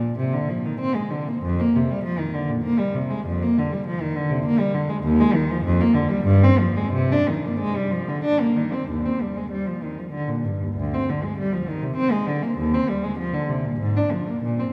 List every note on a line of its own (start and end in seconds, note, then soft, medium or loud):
0.00 0.18 A#2 medium
0.18 0.34 C3 medium
0.33 0.49 D3 medium
0.49 0.65 F3 soft
0.65 0.81 D#3 soft
0.80 0.96 C4 medium
0.95 1.11 G#3 medium
1.11 1.27 D3 soft
1.28 1.44 A#3 medium
1.43 1.58 F2 medium
1.60 1.75 A#3 medium
1.75 1.90 C3 medium
1.91 2.05 G3 medium
2.04 2.19 F3 medium
2.19 2.34 D#3 medium
2.34 2.49 D3 medium
2.50 2.65 A#2 medium
2.64 2.79 A#3 medium
2.79 2.95 G3 medium
2.95 3.10 C3 medium
3.11 3.26 G#3 medium
3.27 3.42 F2 medium
3.43 3.57 A#3 medium
3.58 3.73 D3 medium
3.73 3.87 G3 medium
3.87 4.01 F3 medium
4.01 4.16 D#3 medium
4.16 4.31 D3 medium
4.30 4.46 C3 medium
4.45 4.60 A#3 medium
4.59 4.75 G3 medium
4.74 4.90 D3 medium
4.89 5.05 G#3 medium
5.03 5.19 D#2 loud
5.20 5.35 G#3 medium
5.35 5.50 D#3 medium
5.50 5.65 F3 medium
5.64 5.79 F2 medium
5.81 5.96 A#3 medium
5.94 6.10 D3 medium
6.10 6.27 G3 medium
6.25 6.42 G2 loud
6.44 6.60 C4 medium
6.59 6.76 F3 medium
6.77 6.94 G#3 medium
6.93 7.10 C3 medium
7.12 7.28 D4 medium
7.29 7.44 D#3 medium
7.46 7.61 A#3 medium
7.60 7.75 G#3 medium
7.77 7.92 G3 medium
7.91 8.07 F3 medium
8.09 8.24 D3 medium
8.24 8.40 D4 medium
8.40 8.57 A#3 medium
8.56 8.73 D#3 medium
8.73 8.89 C4 medium
8.89 9.04 D#2 medium
9.06 9.21 C4 soft
9.22 9.37 G3 soft
9.37 9.52 G#3 soft
9.51 9.66 G3 soft
9.67 9.82 F3 soft
9.83 9.97 D#3 soft
9.98 10.13 F3 soft
10.13 10.27 D3 medium
10.28 10.43 A#2 soft
10.45 10.60 G2 soft
10.62 10.76 D#2 soft
10.77 10.92 D2 medium
10.94 11.08 C4 medium
11.10 11.23 D3 soft
11.24 11.38 G#3 soft
11.38 11.52 G3 medium
11.53 11.67 F3 medium
11.68 11.82 D#3 medium
11.83 11.97 C3 medium
11.97 12.11 C4 medium
12.12 12.26 G#3 medium
12.27 12.42 D3 medium
12.43 12.57 A#3 medium
12.58 12.72 D#2 medium
12.74 12.88 C4 medium
12.89 13.03 G3 medium
13.04 13.18 G#3 medium
13.18 13.32 F3 medium
13.33 13.48 D3 medium
13.49 13.63 C3 medium
13.65 13.79 A#2 medium
13.80 13.94 G#2 medium
13.97 14.11 D4 medium
14.13 14.27 F3 soft
14.28 14.43 A#3 soft
14.43 14.58 A#2 medium
14.60 14.73 C4 soft